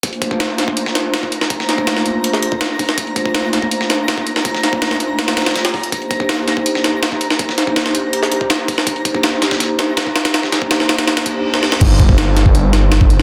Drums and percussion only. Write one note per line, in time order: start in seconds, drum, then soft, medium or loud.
0.03 kick loud
0.03 closed hi-hat medium
0.13 closed hi-hat soft
0.22 kick medium
0.22 closed hi-hat medium
0.31 kick medium
0.40 snare loud
0.40 closed hi-hat medium
0.58 snare soft
0.58 closed hi-hat medium
0.68 kick medium
0.77 closed hi-hat medium
0.86 snare soft
0.95 snare medium
0.95 closed hi-hat medium
1.14 snare loud
1.14 closed hi-hat medium
1.23 kick medium
1.32 closed hi-hat medium
1.41 snare soft
1.41 snare medium
1.50 kick loud
1.50 closed hi-hat medium
1.60 snare soft
1.69 snare soft
1.69 closed hi-hat medium
1.78 kick medium
1.87 snare loud
1.87 closed hi-hat medium
1.97 snare soft
2.06 closed hi-hat medium
2.24 closed hi-hat medium
2.33 snare soft
2.42 closed hi-hat medium
2.52 kick medium
2.61 snare loud
2.61 closed hi-hat medium
2.79 kick medium
2.79 closed hi-hat medium
2.79 open hi-hat medium
2.89 snare soft
2.98 kick loud
2.98 closed hi-hat medium
3.07 closed hi-hat soft
3.16 kick medium
3.16 closed hi-hat medium
3.26 kick medium
3.34 snare loud
3.34 closed hi-hat medium
3.53 snare soft
3.53 closed hi-hat medium
3.62 kick medium
3.71 closed hi-hat medium
3.81 snare soft
3.90 snare medium
3.90 closed hi-hat medium
4.08 snare loud
4.08 closed hi-hat medium
4.18 kick medium
4.27 closed hi-hat medium
4.36 snare soft
4.45 kick loud
4.45 closed hi-hat medium
4.54 snare soft
4.63 snare soft
4.63 closed hi-hat medium
4.73 kick medium
4.82 snare loud
4.82 closed hi-hat medium
4.91 snare soft
5.00 closed hi-hat medium
5.19 snare medium
5.19 closed hi-hat medium
5.28 snare medium
5.28 snare soft
5.28 closed hi-hat medium
5.37 snare loud
5.37 snare medium
5.37 closed hi-hat medium
5.42 snare medium
5.42 closed hi-hat medium
5.46 snare medium
5.46 closed hi-hat medium
5.51 snare medium
5.51 closed hi-hat medium
5.56 snare loud
5.56 closed hi-hat medium
5.65 snare medium
5.65 closed hi-hat medium
5.74 kick medium
5.74 open hi-hat medium
5.83 closed hi-hat medium
5.92 kick loud
5.92 closed hi-hat medium
6.02 closed hi-hat soft
6.11 kick medium
6.11 closed hi-hat medium
6.20 kick medium
6.29 snare loud
6.29 closed hi-hat medium
6.48 snare soft
6.48 closed hi-hat medium
6.57 kick medium
6.66 closed hi-hat medium
6.75 snare soft
6.84 snare medium
6.84 closed hi-hat medium
7.03 snare loud
7.03 closed hi-hat medium
7.12 kick medium
7.21 closed hi-hat medium
7.30 snare medium
7.30 snare soft
7.39 kick loud
7.39 closed hi-hat medium
7.49 snare soft
7.58 snare soft
7.58 closed hi-hat medium
7.67 kick medium
7.76 snare loud
7.76 closed hi-hat medium
7.86 snare soft
7.95 closed hi-hat medium
8.13 closed hi-hat medium
8.23 snare soft
8.31 closed hi-hat medium
8.41 kick medium
8.50 snare loud
8.50 closed hi-hat medium
8.68 kick medium
8.68 closed hi-hat medium
8.68 open hi-hat medium
8.78 snare medium
8.87 kick loud
8.87 closed hi-hat medium
8.96 closed hi-hat soft
9.05 kick medium
9.05 closed hi-hat medium
9.15 kick medium
9.23 snare loud
9.23 closed hi-hat medium
9.42 snare medium
9.42 snare soft
9.42 closed hi-hat medium
9.51 kick medium
9.51 snare loud
9.51 closed hi-hat medium
9.60 snare loud
9.60 closed hi-hat medium
9.79 snare medium
9.79 closed hi-hat medium
9.97 snare loud
9.97 closed hi-hat medium
10.07 kick medium
10.16 snare medium
10.16 closed hi-hat medium
10.25 snare medium
10.25 snare loud
10.25 closed hi-hat medium
10.34 snare loud
10.34 closed hi-hat medium
10.43 snare soft
10.52 snare loud
10.52 snare soft
10.52 closed hi-hat medium
10.62 kick medium
10.71 snare loud
10.71 closed hi-hat medium
10.80 snare medium
10.89 snare loud
10.89 closed hi-hat medium
10.98 snare loud
10.98 closed hi-hat medium
11.07 snare loud
11.07 closed hi-hat medium
11.17 snare loud
11.17 closed hi-hat medium
11.26 kick medium
11.26 closed hi-hat medium
11.54 snare medium
11.63 snare medium
11.72 snare medium
11.81 kick loud
11.81 closed hi-hat medium
11.81 crash medium
12.00 kick loud
12.00 closed hi-hat medium
12.09 kick medium
12.18 snare loud
12.18 closed hi-hat medium
12.37 snare soft
12.37 closed hi-hat medium
12.46 kick medium
12.55 closed hi-hat medium
12.73 snare medium
12.73 closed hi-hat medium
12.92 snare loud
12.92 closed hi-hat medium
13.01 kick medium
13.10 closed hi-hat medium